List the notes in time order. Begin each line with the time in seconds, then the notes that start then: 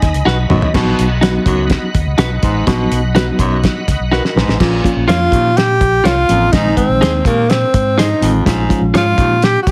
Already playing: D#4 D#5 G#5 B5
0.02 D#2, kick, snare, closed hi-hat
0.14 C#2, closed hi-hat
0.25 B1 D#4 F#4 B4 F#5, snare
0.49 A1 F#2 D#3 F#3 B3 D#4 F#4 D#5, mid tom
0.62 floor tom
0.74 A#1 B2 F#3 B3 D#4 F#4 D#5 F#5 B5, kick, snare, crash
0.99 B1, closed hi-hat
1.21 F#3 B3 D#4 F#4 B4, snare, closed hi-hat
1.46 C#2 F#2, kick, closed hi-hat
1.70 kick, snare, closed hi-hat
1.95 D#2, kick, closed hi-hat
2.06 C#2
2.18 B1 D#4 F#4 B4, snare, closed hi-hat
2.43 A1 G#2, kick, closed hi-hat
2.66 A#1 B2 F#3 B3 D#4 F#4, kick, snare, closed hi-hat
2.91 B1, closed hi-hat
3.15 F#3 B3 D#4 F#4 B4, snare, closed hi-hat
3.39 B1 F#2, kick, closed hi-hat
3.64 kick, snare, closed hi-hat
3.88 C#2, kick, snare, closed hi-hat
3.99 B1
4.11 D#4 F#4 A#4 B4, snare
4.25 snare
4.36 A#1 G#2 G#4 B4, snare
4.48 A1, snare
4.60 A#1 A#2 F3 A#3 C#4 F4, kick, snare, crash
4.83 F3 A#3 C#4 F4, kick, closed hi-hat
4.96 A#1
5.08 F2 F4 A#4 C#5, snare, closed hi-hat
5.32 D#2 A#2, kick, closed hi-hat
5.57 G4, snare, closed hi-hat
5.81 A#1, kick, closed hi-hat
6.04 C2 F4 A#4 C#5, snare, closed hi-hat
6.28 A1 F2 F3 A#3 C#4 F4, closed hi-hat
6.52 A#1 G#2 D#3 G#3 C4 D#4, kick, snare, closed hi-hat
6.77 D#3 G#3 C4 D#4, kick, closed hi-hat
6.89 A#1
7.01 D#2 D#4 G#4 C5, snare, closed hi-hat
7.25 D#2 A#2 A#3, kick, closed hi-hat
7.49 C4, snare, closed hi-hat
7.74 G#2, kick, closed hi-hat
7.98 D#4 G#4 C5, snare, closed hi-hat
8.21 A1 F2 D#3 G#3 C4 D#4, closed hi-hat
8.45 A#1 G#2 F3 G#3 C#4 F4, kick, snare, closed hi-hat
8.68 F3 G#3 C#4 F4, kick, closed hi-hat
8.81 A#1
8.94 G#2 F4 G#4 C#5, snare, closed hi-hat
9.18 D#2 A#2, kick, closed hi-hat
9.42 G4, snare, closed hi-hat
9.62 F#4
9.67 A#1 G4, kick, snare, closed hi-hat